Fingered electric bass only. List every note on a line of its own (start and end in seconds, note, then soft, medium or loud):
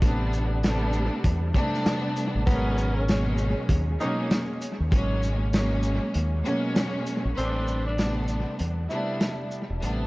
0.02 1.08 A1 loud
1.25 1.51 E2 loud
2.35 2.46 A1 medium
2.47 3.53 G#1 loud
3.69 3.96 D#2 medium
4.80 4.91 D#2 medium
4.92 5.98 G#1 loud
6.15 6.41 D#2 loud
7.25 7.36 A#1 medium
7.38 8.43 A1 loud
8.60 8.86 E2 loud
9.70 9.81 E1 medium
9.83 10.07 A1 loud